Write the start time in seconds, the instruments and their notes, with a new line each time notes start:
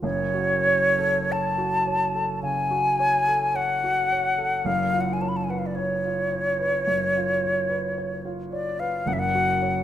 0.02 grand piano F#1 F#2, flute C#5
0.34 grand piano F#4
0.67 grand piano C#5
0.99 grand piano A4
1.30 grand piano C#5, flute A5
1.58 grand piano F#4
1.87 grand piano C#5
2.15 grand piano A4
2.43 grand piano C#3, flute G#5
2.71 grand piano F#4
2.99 grand piano C#5
3.27 grand piano A4
3.54 grand piano C#5, flute F#5
3.84 grand piano F#4
4.12 grand piano C#5
4.38 grand piano A4
4.65 grand piano F#1 F#2, flute F5
4.93 grand piano F4
5.01 flute F#5
5.13 flute G#5
5.21 grand piano C#5, flute A5
5.29 flute B5
5.36 flute A5
5.44 flute G#5
5.49 grand piano B4, flute F#5
5.59 flute F5
5.66 flute D5
5.75 flute C#5, grand piano C#5
6.05 grand piano F4
6.32 grand piano C#5
6.59 grand piano B4
6.87 grand piano F#2
7.16 grand piano F4
7.43 grand piano C#5
7.69 grand piano B4
7.98 grand piano C#5
8.25 grand piano F4
8.52 grand piano C#5, flute D5
8.80 grand piano B4, flute F5
9.06 grand piano F#1 F#2, flute F#5
9.13 flute E5
9.19 flute F#5
9.35 grand piano F#4
9.62 grand piano C#5